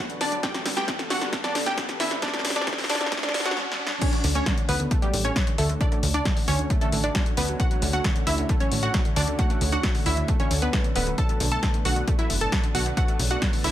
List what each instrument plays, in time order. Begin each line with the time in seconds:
Already playing: analog synth pad B2 F#3 D4 B4, synth pluck F#4 F#5, riser
0.10 synth arpeggio sound D3, closed hi-hat
0.21 synth arpeggio sound D3, synth pluck D4 D5, snare, open hi-hat
0.32 synth arpeggio sound F#3, closed hi-hat
0.43 analog synth pad G2 G3 B3 A4, synth arpeggio sound D3, synth pluck G4 G5, kick, snare, closed hi-hat
0.54 synth arpeggio sound F#3, snare, closed hi-hat
0.66 synth arpeggio sound D3, snare, open hi-hat
0.77 synth arpeggio sound A3, synth pluck G4 G5, snare, closed hi-hat
0.88 synth arpeggio sound D3, kick, snare, closed hi-hat
0.99 synth arpeggio sound D3, snare, closed hi-hat
1.10 synth arpeggio sound D3, synth pluck F#4 F#5, snare, open hi-hat
1.22 synth arpeggio sound D3, snare, closed hi-hat
1.33 synth arpeggio sound A3, kick, snare, closed hi-hat
1.44 synth arpeggio sound F#3, synth pluck D4 D5, snare, closed hi-hat
1.55 synth arpeggio sound D3, snare, open hi-hat
1.66 synth arpeggio sound A2, synth pluck G4 G5, snare, closed hi-hat
1.77 synth arpeggio sound G3, kick, snare, closed hi-hat
1.89 synth arpeggio sound D3, snare, closed hi-hat
2.00 synth arpeggio sound D3, synth pluck E4 E5, snare, open hi-hat
2.11 synth arpeggio sound D3, snare, closed hi-hat
2.22 synth arpeggio sound A3, synth pluck D4 D5, kick, snare, closed hi-hat
2.28 snare
2.33 synth arpeggio sound A3, snare, closed hi-hat
2.39 snare
2.45 synth arpeggio sound C#3, snare, open hi-hat
2.50 snare
2.56 synth arpeggio sound D4, synth pluck D4 D5, snare, closed hi-hat
2.61 snare
2.67 synth arpeggio sound G3, kick, snare, closed hi-hat
2.73 snare
2.78 synth arpeggio sound D3, snare, open hi-hat
2.84 snare
2.89 synth arpeggio sound D3, synth pluck D4 D5, snare, open hi-hat
2.95 snare
3.01 synth arpeggio sound D3, snare, closed hi-hat
3.06 snare
3.12 synth arpeggio sound A3, kick, snare, closed hi-hat
3.17 snare
3.23 synth arpeggio sound D3, synth pluck D4 D5, snare, closed hi-hat
3.29 snare
3.34 synth arpeggio sound D3, snare, open hi-hat
3.40 snare
3.45 synth arpeggio sound D3, synth pluck F#4 F#5, snare, closed hi-hat
3.51 snare
3.57 snare
3.72 snare
3.87 snare
4.01 synth arpeggio sound D3, analog synth pad D3 A3 C#4 F#4, synth pluck C#4 C#5, kick, closed hi-hat, crash
4.13 synth arpeggio sound F#3, closed hi-hat
4.24 analog synth bass D2, synth arpeggio sound D3, open hi-hat
4.35 synth arpeggio sound A3, synth pluck C#4 C#5, closed hi-hat
4.46 synth arpeggio sound D3, kick, snare, closed hi-hat
4.57 synth arpeggio sound D3, closed hi-hat
4.69 analog synth bass D2, synth arpeggio sound D3, synth pluck B3 B4, open hi-hat
4.80 synth arpeggio sound D3, closed hi-hat
4.91 synth arpeggio sound A3, kick, closed hi-hat
5.02 synth arpeggio sound F#3, synth pluck G3 G4, closed hi-hat
5.13 analog synth bass A1, synth arpeggio sound D3, open hi-hat
5.25 synth arpeggio sound A2, synth pluck C#4 C#5, closed hi-hat
5.36 synth arpeggio sound F#3, kick, snare, closed hi-hat
5.47 synth arpeggio sound D3, closed hi-hat
5.58 analog synth bass D2, synth arpeggio sound D3, synth pluck A3 A4, open hi-hat
5.69 synth arpeggio sound D3, closed hi-hat
5.81 synth arpeggio sound A3, synth pluck D4 D5, kick, closed hi-hat
5.92 synth arpeggio sound A3, closed hi-hat
6.03 analog synth bass D2, synth arpeggio sound C#3, open hi-hat
6.14 synth arpeggio sound D4, synth pluck D4 D5, closed hi-hat
6.25 synth arpeggio sound F#3, kick, snare, closed hi-hat
6.37 synth arpeggio sound D3, open hi-hat
6.48 analog synth bass D2, synth arpeggio sound D3, synth pluck C#4 C#5, open hi-hat
6.59 synth arpeggio sound D3, closed hi-hat
6.70 synth arpeggio sound A3, kick, closed hi-hat
6.81 synth arpeggio sound D3, synth pluck A3 A4, closed hi-hat
6.92 analog synth bass A1, synth arpeggio sound D3, open hi-hat
7.04 synth arpeggio sound D3, synth pluck D4 D5, closed hi-hat
7.15 synth arpeggio sound F#3, kick, snare, closed hi-hat
7.26 synth arpeggio sound D3, closed hi-hat
7.37 analog synth bass D2, synth arpeggio sound D3, synth pluck B3 B4, open hi-hat
7.48 synth arpeggio sound F#3, closed hi-hat
7.60 synth arpeggio sound D3, synth pluck F#4 F#5, kick, closed hi-hat
7.71 synth arpeggio sound F#3, closed hi-hat
7.82 analog synth bass D2, synth arpeggio sound D3, open hi-hat
7.93 synth arpeggio sound A3, synth pluck F#4 F#5, closed hi-hat
8.04 synth arpeggio sound D3, kick, snare, closed hi-hat
8.16 synth arpeggio sound D3, closed hi-hat
8.27 analog synth bass D2, synth arpeggio sound D3, synth pluck E4 E5, open hi-hat
8.38 synth arpeggio sound D3, closed hi-hat
8.49 synth arpeggio sound A3, kick, closed hi-hat
8.60 synth arpeggio sound F#3, synth pluck C#4 C#5, closed hi-hat
8.72 analog synth bass A1, synth arpeggio sound D3, open hi-hat
8.83 synth arpeggio sound A2, synth pluck F#4 F#5, closed hi-hat
8.94 synth arpeggio sound F#3, kick, snare, closed hi-hat
9.05 synth arpeggio sound D3, closed hi-hat
9.16 analog synth bass D2, synth arpeggio sound D3, synth pluck D4 D5, open hi-hat
9.28 synth arpeggio sound D3, closed hi-hat
9.39 synth arpeggio sound A3, synth pluck F#4 F#5, kick, closed hi-hat
9.50 synth arpeggio sound A3, closed hi-hat
9.61 analog synth bass D2, synth arpeggio sound C#3, open hi-hat
9.72 synth arpeggio sound D4, synth pluck F#4 F#5, closed hi-hat
9.83 synth arpeggio sound F#3, kick, snare, closed hi-hat
9.95 synth arpeggio sound D3, open hi-hat
10.06 analog synth bass D2, synth arpeggio sound D3, synth pluck E4 E5, open hi-hat
10.17 synth arpeggio sound D3, closed hi-hat
10.28 synth arpeggio sound A3, kick, closed hi-hat
10.40 synth arpeggio sound D3, synth pluck C#4 C#5, closed hi-hat
10.51 analog synth bass D2, synth arpeggio sound D3, open hi-hat
10.62 synth arpeggio sound D3, synth pluck B3 B4, closed hi-hat
10.73 synth arpeggio sound F#3, kick, snare, closed hi-hat
10.84 synth arpeggio sound D3, closed hi-hat
10.96 analog synth bass D1, synth arpeggio sound D3, synth pluck B3 B4, open hi-hat
11.07 synth arpeggio sound F#3, closed hi-hat
11.18 synth arpeggio sound D3, analog synth pad B3 D4, synth pluck A4 A5, kick, closed hi-hat
11.29 synth arpeggio sound F#3, closed hi-hat
11.40 analog synth bass B1, synth arpeggio sound D3, open hi-hat
11.52 synth arpeggio sound A3, synth pluck A4 A5, closed hi-hat
11.63 synth arpeggio sound D3, kick, snare, closed hi-hat
11.74 synth arpeggio sound D3, closed hi-hat
11.85 analog synth bass B1, synth arpeggio sound D3, synth pluck F#4 F#5, open hi-hat
11.96 synth arpeggio sound D3, closed hi-hat
12.07 synth arpeggio sound A3, kick, closed hi-hat
12.19 synth arpeggio sound F#3, synth pluck E4 E5, closed hi-hat
12.30 analog synth bass F#1, synth arpeggio sound D3, open hi-hat
12.41 synth arpeggio sound A2, synth pluck A4 A5, closed hi-hat
12.52 synth arpeggio sound F#3, kick, snare, closed hi-hat
12.63 synth arpeggio sound D3, closed hi-hat
12.75 analog synth bass B1, synth arpeggio sound D3, synth pluck F#4 F#5, open hi-hat
12.86 synth arpeggio sound D3, closed hi-hat
12.97 synth arpeggio sound A3, synth pluck F#4 F#5, kick, closed hi-hat
13.08 synth arpeggio sound A3, closed hi-hat
13.19 analog synth bass B1, synth arpeggio sound C#3, open hi-hat
13.31 synth arpeggio sound D4, synth pluck F#4 F#5, closed hi-hat
13.42 synth arpeggio sound F#3, kick, snare, closed hi-hat
13.53 synth arpeggio sound D3, open hi-hat
13.64 analog synth bass B1, synth arpeggio sound D3, synth pluck E4 E5, open hi-hat